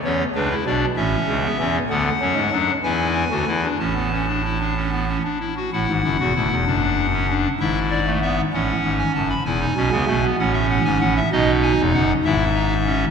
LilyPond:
<<
  \new Staff \with { instrumentName = "Pipe organ" } { \time 6/8 \key a \major \tempo 4. = 64 << { cis''8 b'8 d''8 e''4. | fis''4. gis''4. | a''2~ a''8 r8 | fis''2. |
e''8 d''8 e''8 fis''8. gis''16 a''16 b''16 | gis''4. fis''16 e''16 fis''16 gis''16 fis''16 e''16 | dis''8 gis''8 fis''8 e''4. | } \\ { cis'8 d'16 e'16 d'8 cis'8. b16 cis'8 | b8 cis'8 d'8 e'8. fis'16 e'16 d'16 | cis'16 b16 cis'16 d'16 e'16 d'16 cis'16 b16 cis'16 d'16 e'16 fis'16 | e'8 e'16 fis'16 e'8 d'8. cis'16 d'8 |
e'8. a16 b8 cis'4. | e'16 dis'16 cis'16 b16 a16 b16 cis'4. | dis'4. e'8 dis'8 cis'8 | } >> }
  \new Staff \with { instrumentName = "Pipe organ" } { \clef bass \time 6/8 \key a \major <e, e>8 <cis, cis>8 <b,, b,>8 <a,, a,>8 <cis, cis>8 <e, e>8 | <d, d>8 <fis, fis>16 <gis, gis>16 <fis, fis>8 <e, e>8. <d, d>16 <e, e>8 | <a,, a,>2~ <a,, a,>8 r8 | <a,, a,>16 <gis,, gis,>16 <fis,, fis,>16 <e,, e,>16 <d,, d,>16 <e,, e,>16 <fis,, fis,>4. |
<gis,, gis,>4. <a,, a,>8 <gis,, gis,>8 <fis,, fis,>8 | <e,, e,>8 <b,, b,>16 <cis, cis>16 <b,, b,>8 <a,, a,>8. <gis,, gis,>16 <a,, a,>8 | <b,, b,>8. <e,, e,>16 <fis,, fis,>8 <gis,, gis,>4. | }
>>